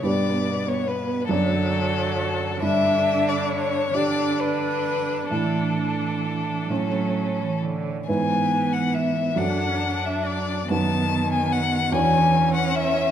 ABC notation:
X:1
M:6/8
L:1/16
Q:3/8=45
K:Amix
V:1 name="Violin"
d3 c B2 A6 | e3 d c2 d2 B4 | A8- A2 z2 | [K:Emix] g3 f e2 f3 e d2 |
a3 g f2 g3 f e2 |]
V:2 name="Grand piano"
[G,,DGB]6 [F,,DAd]6 | G,,6 [DGd]6 | [A,,DEA]6 [A,,CEA]6 | [K:Emix] [G,,B,EB]6 [F,,DFA]6 |
[F,,^DFB]6 [E,,=DFc]6 |]
V:3 name="Viola"
B,6 F,6 | D6 D6 | D6 C4- C z | [K:Emix] B,6 D6 |
B,6 C6 |]
V:4 name="Cello" clef=bass
B,,6 D,6 | D,6 D,6 | E,6 F,3 E, D,2 | [K:Emix] E,6 F,6 |
^D,6 E,6 |]